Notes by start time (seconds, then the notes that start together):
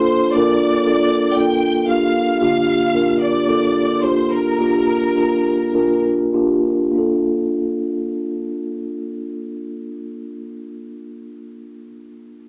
Already playing: F2 F3 A#3 D4 F4 A4 C5
0.32 A#3 D4 F4 A#4 D5
0.85 A#3 D4 F4 A4
1.34 A#3 D4 F4 A4 G5
1.87 A#3 D4 F4 G4 F5
2.39 G2 D3 A#3 D4 F4 G4 F5
2.93 A#3 D4 F4 A#4
3.21 D5
3.47 A#3 D4 F4 A4
4.01 A#3 D4 F4 G4 C5
4.31 A#4
4.59 A#3 D4 F4 G4
5.15 A#3 D4 F4 A#4
5.73 A#3 D4 F4 A#4
6.33 A#3 D4 F4 G4
6.92 A#1 A#3 D4
6.96 F4 A4